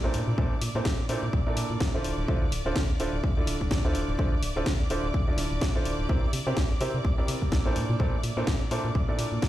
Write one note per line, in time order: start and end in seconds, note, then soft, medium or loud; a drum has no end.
0.00 0.16 C2 medium
0.00 0.35 A#2 medium
0.00 0.35 D4 medium
0.00 0.35 E4 medium
0.00 0.35 A4 medium
0.00 0.35 A#4 medium
0.00 0.35 C5 medium
0.00 9.48 D5 medium
0.00 9.48 D6 medium
0.14 0.23 A#2 loud
0.14 open hi-hat loud
0.28 0.34 A#2 loud
0.38 0.55 A#1 loud
0.38 0.53 A#2 loud
0.38 0.53 D4 medium
0.38 0.53 E4 medium
0.38 0.53 A4 medium
0.38 0.53 A#4 medium
0.38 0.53 C5 loud
0.38 kick loud
0.61 0.71 A#2 medium
0.61 open hi-hat loud
0.75 0.82 A#2 medium
0.75 0.87 A#2 medium
0.75 0.87 D4 medium
0.75 0.87 E4 medium
0.75 0.87 A4 medium
0.75 0.87 A#4 medium
0.75 0.87 C5 loud
0.85 1.02 A#1 medium
0.85 kick loud
0.85 snare loud
1.09 1.24 A#2 medium
1.09 1.18 A#2 medium
1.09 1.24 D4 medium
1.09 1.24 E4 medium
1.09 1.24 A4 medium
1.09 1.24 A#4 medium
1.09 1.24 C5 loud
1.09 open hi-hat loud
1.23 1.30 A#2 medium
1.33 1.50 A#1 loud
1.33 kick loud
1.47 1.91 A#2 medium
1.47 1.91 D4 medium
1.47 1.91 E4 medium
1.47 1.91 A4 medium
1.47 1.91 A#4 medium
1.47 1.91 D5 medium
1.57 1.66 A#2 medium
1.57 open hi-hat loud
1.71 1.77 A#2 medium
1.80 2.06 A#1 medium
1.80 kick loud
1.80 snare loud
1.94 2.26 D3 medium
1.94 2.26 D4 medium
1.94 2.26 E4 medium
1.94 2.26 F4 medium
1.94 2.26 A4 medium
1.94 2.26 C5 medium
2.04 2.13 D1 loud
2.04 open hi-hat loud
2.18 2.25 D1 loud
2.28 2.45 D2 loud
2.28 2.43 D3 loud
2.28 2.43 D4 medium
2.28 2.43 E4 medium
2.28 2.43 F4 medium
2.28 2.43 A4 medium
2.28 2.43 C5 loud
2.28 kick loud
2.52 2.61 D1 medium
2.52 open hi-hat loud
2.66 2.72 D1 medium
2.66 2.77 D3 medium
2.66 2.77 D4 medium
2.66 2.77 E4 medium
2.66 2.77 F4 medium
2.66 2.77 A4 medium
2.66 2.77 C5 loud
2.76 2.93 D2 medium
2.76 kick loud
2.76 snare loud
3.00 3.09 D1 medium
3.00 3.14 D3 medium
3.00 3.15 D4 medium
3.00 3.15 E4 medium
3.00 3.15 F4 medium
3.00 3.15 A4 medium
3.00 3.15 C5 loud
3.00 open hi-hat loud
3.13 3.20 D1 medium
3.24 3.40 D2 loud
3.24 kick loud
3.37 3.82 D3 medium
3.37 3.82 D4 medium
3.37 3.82 E4 medium
3.37 3.82 F4 medium
3.37 3.82 A4 medium
3.37 3.82 D5 medium
3.47 3.56 D1 medium
3.47 open hi-hat loud
3.61 3.68 D1 medium
3.61 kick medium
3.71 3.97 D2 medium
3.71 kick loud
3.71 snare loud
3.85 4.16 D3 medium
3.85 4.16 D4 medium
3.85 4.16 E4 medium
3.85 4.16 F4 medium
3.85 4.16 A4 medium
3.85 4.16 C5 medium
3.95 4.04 D1 loud
3.95 open hi-hat loud
4.09 4.15 D1 loud
4.19 4.36 D2 loud
4.19 4.33 D3 loud
4.19 4.33 D4 medium
4.19 4.33 E4 medium
4.19 4.33 F4 medium
4.19 4.33 A4 medium
4.19 4.33 C5 loud
4.19 kick loud
4.42 4.52 D1 medium
4.42 open hi-hat loud
4.56 4.63 D1 loud
4.56 4.68 D3 medium
4.56 4.68 D4 medium
4.56 4.68 E4 medium
4.56 4.68 F4 medium
4.56 4.68 A4 medium
4.56 4.68 C5 medium
4.66 4.83 D2 medium
4.66 kick loud
4.66 snare loud
4.90 4.99 D1 medium
4.90 5.05 D3 medium
4.90 5.05 D4 medium
4.90 5.05 E4 medium
4.90 5.05 F4 medium
4.90 5.05 A4 medium
4.90 5.05 C5 loud
4.90 open hi-hat loud
5.04 5.11 D1 medium
5.14 5.31 D2 loud
5.14 kick loud
5.28 5.72 D3 medium
5.28 5.72 D4 medium
5.28 5.72 E4 medium
5.28 5.72 F4 medium
5.28 5.72 A4 medium
5.28 5.72 D5 medium
5.38 5.47 D1 loud
5.38 snare soft
5.38 open hi-hat loud
5.51 5.58 D1 loud
5.61 5.71 D2 medium
5.61 kick loud
5.61 snare loud
5.75 6.07 D3 medium
5.75 6.07 D4 medium
5.75 6.07 E4 medium
5.75 6.07 F4 medium
5.75 6.07 A4 medium
5.75 6.07 C5 medium
5.85 5.94 D1 medium
5.85 open hi-hat loud
5.99 6.06 D1 medium
6.09 6.26 C2 loud
6.09 6.24 C3 medium
6.09 6.24 C4 medium
6.09 6.24 E4 medium
6.09 6.24 G4 medium
6.09 6.24 A#4 medium
6.09 6.24 C5 loud
6.09 kick loud
6.33 6.42 C3 medium
6.33 open hi-hat loud
6.47 6.58 C3 medium
6.47 6.54 C3 medium
6.47 6.58 C4 medium
6.47 6.58 E4 medium
6.47 6.58 G4 medium
6.47 6.58 A#4 medium
6.47 6.58 C5 loud
6.57 6.74 C2 medium
6.57 kick loud
6.57 snare loud
6.81 6.95 C3 medium
6.81 6.90 C3 medium
6.81 6.95 C4 medium
6.81 6.95 E4 medium
6.81 6.95 G4 medium
6.81 6.95 A#4 medium
6.81 6.95 C5 loud
6.81 open hi-hat loud
6.94 7.01 C3 medium
7.05 7.21 C2 loud
7.05 kick loud
7.18 7.62 C3 medium
7.18 7.63 C4 medium
7.18 7.62 E4 medium
7.18 7.62 G4 medium
7.18 7.62 A#4 medium
7.18 7.62 D5 medium
7.28 7.37 C3 medium
7.28 open hi-hat loud
7.42 7.49 C3 medium
7.42 kick medium
7.52 7.77 C2 medium
7.52 kick loud
7.52 snare loud
7.66 7.97 A#2 medium
7.66 7.97 D4 medium
7.66 7.97 E4 medium
7.66 7.97 A4 medium
7.66 7.97 A#4 medium
7.66 7.97 C5 medium
7.76 7.85 A#2 loud
7.76 open hi-hat loud
7.90 7.96 A#2 loud
8.00 8.17 A#1 loud
8.00 8.14 A#2 medium
8.00 8.14 D4 medium
8.00 8.14 E4 medium
8.00 8.14 A4 medium
8.00 8.14 A#4 medium
8.00 8.14 C5 loud
8.00 kick loud
8.23 8.33 A#2 medium
8.23 open hi-hat medium
8.37 8.49 A#2 medium
8.37 8.44 A#2 medium
8.37 8.49 D4 medium
8.37 8.49 E4 medium
8.37 8.49 A4 medium
8.37 8.49 A#4 medium
8.37 8.49 C5 loud
8.47 8.64 A#1 medium
8.47 kick loud
8.47 snare loud
8.71 8.86 A#2 medium
8.71 8.80 A#2 medium
8.71 8.86 D4 medium
8.71 8.86 E4 medium
8.71 8.86 A4 medium
8.71 8.86 A#4 medium
8.71 8.86 C5 loud
8.71 open hi-hat loud
8.85 8.92 A#2 medium
8.95 9.12 A#1 loud
8.95 kick loud
9.08 9.48 A#2 medium
9.08 9.48 D4 medium
9.08 9.48 E4 medium
9.08 9.48 A4 medium
9.08 9.48 A#4 medium
9.08 9.48 D5 medium
9.19 9.28 A#2 medium
9.19 open hi-hat loud
9.32 9.39 A#2 medium
9.42 9.48 A#1 medium
9.42 kick loud
9.42 snare loud